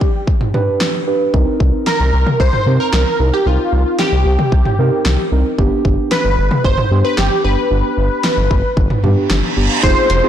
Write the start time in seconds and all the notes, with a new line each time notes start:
Already playing: G4
0.01 kick
0.27 kick
0.41 mid tom
0.54 D4 G4 B4, mid tom
0.81 snare
1.07 D4 G4 B4
1.34 C2 C4 D#4 A#4, kick
1.60 C2, kick
1.87 A#4, snare
2.00 C2
2.13 C2
2.27 mid tom
2.40 C2 C5, kick
2.53 mid tom
2.66 C3 C4 D#4 A#4
2.80 A#4
2.93 C2 A#4, snare
3.20 C2 C4 D#4 A#4
3.33 G4
3.46 C2 C4 D#4 F4 A#4
3.73 C2
3.99 G4, snare
4.12 C2
4.26 C2
4.39 mid tom
4.52 C2, kick
4.65 mid tom
4.79 C3 C4 D#4 A#4
5.05 C2, snare
5.32 C2 C4 D#4 A#4
5.58 G1 B3 D4 G4, kick
5.85 G1, kick
6.12 B4, snare
6.25 G1
6.38 G1
6.51 mid tom
6.64 G1 C5, kick
6.78 mid tom
6.91 G2 B3 D4 G4
7.05 B4
7.18 G1 G4, snare
7.44 G1 B3 D4 G4 B4
7.71 G1 B3 D4 G4
7.97 G1
8.24 snare
8.37 G1
8.51 G1, kick
8.77 G1, kick, reverse cymbal
8.90 mid tom
9.04 G2 B3 D4 G4, mid tom
9.30 G1, snare
9.57 G1 B3 D4 G4
9.83 F1 C4 D#4 F4 G#4 C5, kick, closed hi-hat, downlifter
10.10 F1, closed hi-hat
10.23 C4 D#4 F4 G#4